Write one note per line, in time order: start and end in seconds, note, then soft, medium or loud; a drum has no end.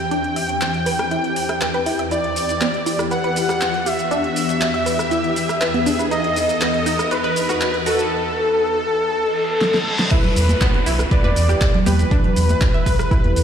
0.00 6.07 E2 medium
0.00 2.07 E3 medium
0.00 2.07 C4 medium
0.00 6.07 G4 medium
0.00 2.02 G5 loud
0.00 riser medium
0.11 0.16 D4 loud
0.11 closed hi-hat soft
0.24 closed hi-hat soft
0.36 0.48 E5 medium
0.36 open hi-hat medium
0.49 closed hi-hat soft
0.61 clap loud
0.61 closed hi-hat soft
0.74 closed hi-hat soft
0.86 0.94 B4 medium
0.86 open hi-hat loud
0.99 cross-stick medium
0.99 closed hi-hat medium
1.11 1.19 E4 medium
1.11 closed hi-hat soft
1.24 closed hi-hat soft
1.36 open hi-hat loud
1.49 1.60 E5 medium
1.49 cross-stick medium
1.49 closed hi-hat soft
1.61 1.66 B4 medium
1.61 clap loud
1.61 closed hi-hat soft
1.74 1.79 B4 loud
1.74 closed hi-hat soft
1.86 1.91 E4 medium
1.86 open hi-hat loud
1.99 2.06 E5 medium
1.99 closed hi-hat soft
2.11 8.07 E3 medium
2.11 8.07 B3 medium
2.11 2.23 E4 medium
2.11 3.02 D5 loud
2.11 closed hi-hat medium
2.11 shaker soft
2.24 closed hi-hat soft
2.36 open hi-hat loud
2.36 shaker medium
2.49 closed hi-hat medium
2.49 shaker soft
2.61 2.73 B3 medium
2.61 clap loud
2.61 closed hi-hat soft
2.61 shaker soft
2.74 closed hi-hat soft
2.86 2.91 E4 medium
2.86 open hi-hat loud
2.86 shaker medium
2.99 cross-stick medium
2.99 closed hi-hat medium
2.99 shaker soft
3.11 3.19 B4 medium
3.11 3.88 F#5 loud
3.11 closed hi-hat soft
3.11 shaker soft
3.24 3.29 B4 loud
3.24 closed hi-hat soft
3.36 open hi-hat medium
3.36 shaker medium
3.49 3.60 G4 medium
3.49 cross-stick medium
3.49 closed hi-hat soft
3.49 shaker soft
3.61 clap loud
3.61 closed hi-hat soft
3.61 shaker soft
3.74 closed hi-hat soft
3.86 3.91 G4 medium
3.86 6.02 E5 loud
3.86 open hi-hat medium
3.86 shaker medium
3.99 closed hi-hat soft
3.99 shaker soft
4.11 4.16 D4 loud
4.11 closed hi-hat soft
4.11 shaker soft
4.24 closed hi-hat soft
4.36 open hi-hat loud
4.36 shaker medium
4.49 closed hi-hat medium
4.49 shaker soft
4.61 clap loud
4.61 closed hi-hat soft
4.61 shaker soft
4.74 4.85 E5 medium
4.74 closed hi-hat soft
4.86 4.94 B4 medium
4.86 open hi-hat loud
4.86 shaker medium
4.99 cross-stick medium
4.99 closed hi-hat medium
4.99 shaker soft
5.11 5.19 E4 medium
5.11 closed hi-hat soft
5.11 shaker soft
5.24 closed hi-hat soft
5.36 open hi-hat medium
5.36 shaker medium
5.49 cross-stick medium
5.49 closed hi-hat medium
5.49 shaker soft
5.61 5.73 B4 loud
5.61 clap loud
5.61 closed hi-hat medium
5.61 shaker soft
5.74 5.81 B3 medium
5.74 closed hi-hat soft
5.86 5.94 D4 medium
5.86 open hi-hat loud
5.86 shaker medium
5.99 6.06 B4 medium
5.99 closed hi-hat soft
5.99 shaker soft
6.11 8.09 E2 medium
6.11 6.23 D#4 medium
6.11 8.09 D#4 medium
6.11 7.13 D#5 loud
6.11 closed hi-hat medium
6.11 shaker soft
6.24 closed hi-hat soft
6.36 open hi-hat loud
6.36 shaker medium
6.49 closed hi-hat medium
6.49 shaker soft
6.61 6.73 B3 medium
6.61 clap loud
6.61 closed hi-hat medium
6.61 shaker soft
6.74 closed hi-hat soft
6.86 6.91 D#4 medium
6.86 open hi-hat loud
6.86 shaker medium
6.99 cross-stick medium
6.99 closed hi-hat medium
6.99 shaker soft
7.11 7.19 B4 medium
7.11 7.77 B4 loud
7.11 closed hi-hat medium
7.11 shaker soft
7.24 7.29 B4 loud
7.24 closed hi-hat soft
7.36 open hi-hat medium
7.36 shaker medium
7.49 7.60 F#4 medium
7.49 cross-stick medium
7.49 closed hi-hat medium
7.49 shaker soft
7.61 clap loud
7.61 closed hi-hat medium
7.61 shaker soft
7.74 closed hi-hat soft
7.86 7.91 F#4 medium
7.86 10.02 A4 loud
7.86 open hi-hat loud
7.86 shaker medium
7.99 closed hi-hat medium
7.99 shaker soft
9.11 reverse cymbal medium
9.61 snare medium
9.74 snare medium
9.99 snare medium
10.11 13.44 E3 medium
10.11 10.23 E4 medium
10.11 13.44 E4 medium
10.11 13.44 G4 medium
10.11 11.02 B4 loud
10.11 12.09 B4 medium
10.11 kick loud
10.11 closed hi-hat medium
10.11 crash loud
10.11 downlifter medium
10.11 shaker soft
10.24 closed hi-hat soft
10.24 low conga medium
10.36 10.55 E2 loud
10.36 open hi-hat loud
10.36 shaker medium
10.49 closed hi-hat medium
10.49 high conga loud
10.49 shaker soft
10.61 10.73 B3 medium
10.61 kick loud
10.61 clap loud
10.61 closed hi-hat medium
10.61 shaker soft
10.74 closed hi-hat soft
10.86 11.05 B1 medium
10.86 10.91 E4 medium
10.86 open hi-hat loud
10.86 shaker medium
10.99 cross-stick medium
10.99 closed hi-hat medium
10.99 shaker soft
11.11 11.19 B4 medium
11.11 11.77 D5 loud
11.11 kick loud
11.11 closed hi-hat medium
11.11 shaker soft
11.24 11.33 E2 medium
11.24 11.29 B4 loud
11.24 closed hi-hat soft
11.24 high conga medium
11.36 11.55 E2 medium
11.36 open hi-hat loud
11.36 shaker medium
11.49 11.60 G4 medium
11.49 cross-stick medium
11.49 closed hi-hat medium
11.49 shaker soft
11.61 kick loud
11.61 clap loud
11.61 closed hi-hat medium
11.61 shaker soft
11.74 closed hi-hat soft
11.74 low conga loud
11.86 12.05 E2 loud
11.86 11.91 G4 medium
11.86 13.44 B4 loud
11.86 open hi-hat loud
11.86 high conga loud
11.86 shaker medium
11.99 closed hi-hat medium
11.99 shaker soft
12.11 12.16 D4 loud
12.11 13.44 A4 medium
12.11 kick loud
12.11 closed hi-hat medium
12.11 shaker soft
12.24 closed hi-hat soft
12.24 low conga medium
12.36 12.55 E2 loud
12.36 open hi-hat loud
12.36 shaker medium
12.49 closed hi-hat medium
12.49 high conga loud
12.49 shaker soft
12.61 kick loud
12.61 clap loud
12.61 closed hi-hat medium
12.61 shaker soft
12.74 12.85 E5 medium
12.74 closed hi-hat soft
12.86 13.05 B1 medium
12.86 12.94 B4 medium
12.86 kick medium
12.86 open hi-hat loud
12.86 shaker medium
12.99 cross-stick medium
12.99 closed hi-hat medium
12.99 shaker soft
13.11 13.19 E4 medium
13.11 kick loud
13.11 closed hi-hat medium
13.11 shaker soft
13.24 13.33 E2 medium
13.24 closed hi-hat soft
13.24 high conga medium
13.36 13.44 E2 medium
13.36 open hi-hat loud
13.36 shaker medium